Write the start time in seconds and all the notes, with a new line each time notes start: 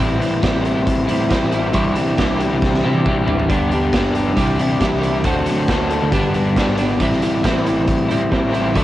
Already playing: A2
0.00 A1 E3 G3 C4 E4
0.19 G3 C4 E4, closed hi-hat
0.41 A1 A2 E3 G3 C4 E4, kick, snare, closed hi-hat
0.65 C4 E4, closed hi-hat
0.78 A1
0.87 kick, closed hi-hat
1.07 G3 C4 E4, closed hi-hat
1.11 A2
1.29 E3 G3 C4 E4, kick, snare, closed hi-hat
1.44 A1
1.52 G3 C4 E4, closed hi-hat
1.72 C2 C3 E3 G3 C4 D4 E4 G4, kick, closed hi-hat
1.95 G3 C4 D4 E4 G4, closed hi-hat
2.17 C2 C3 E3 G3 C4 D4 E4 G4, kick, snare, closed hi-hat
2.39 C4 E4 G4, closed hi-hat
2.53 C2
2.62 kick, snare
2.74 snare
2.83 C3 G3 C4 D4 E4 G4
2.95 high tom
3.05 E3 G3 C4 D4 E4, kick, mid tom
3.09 G4
3.18 A1
3.26 G3 D4 E4, floor tom
3.40 floor tom
3.49 G1 G2 D3 G3 B3 D4 G4, kick, closed hi-hat
3.71 G3 B3 D4 G4, closed hi-hat
3.92 G1 G2 D3 G3 B3 D4 G4, kick, snare, closed hi-hat
4.15 D4 G4, closed hi-hat
4.27 G2
4.35 C2 C3 E3 G3 C4 D4 E4, kick, closed hi-hat
4.40 G4
4.58 C3 G3 C4 D4 E4 G4, closed hi-hat
4.80 E3 G3 C4 D4 E4 G4, kick, snare, closed hi-hat
4.92 C2
5.02 G3 D4 E4, closed hi-hat
5.24 D2 D3 F#3 A3 C4 D4 F#4 A4, kick, closed hi-hat
5.46 A3 C4 D4 F#4 A4, closed hi-hat
5.68 D2 D3 F#3 A3 C4 D4 F#4 A4, kick, snare, closed hi-hat
5.90 C4 D4 A4, closed hi-hat
6.02 D2
6.12 G1 G2 D3 G3 B3 D4, kick, closed hi-hat
6.34 G2 G3 B3 D4, closed hi-hat
6.56 D3 G3 B3 D4, kick, snare, closed hi-hat
6.68 G#1
6.77 B3 D4, closed hi-hat
6.82 G3
7.00 A1 A2 E3 G3 C4 E4, kick, closed hi-hat
7.12 snare
7.22 G3 C4 E4, closed hi-hat
7.43 A1 A2 E3 G3 C4 E4, kick, snare, closed hi-hat
7.66 C4 E4, closed hi-hat
7.78 A1
7.87 kick, closed hi-hat
8.09 A2 G3 C4 E4, closed hi-hat
8.30 E3 G3 C4 E4, kick, snare, closed hi-hat
8.44 A1
8.53 G3 C4 E4, closed hi-hat
8.74 D2 D3 F#3 A3 D4 E4, kick, closed hi-hat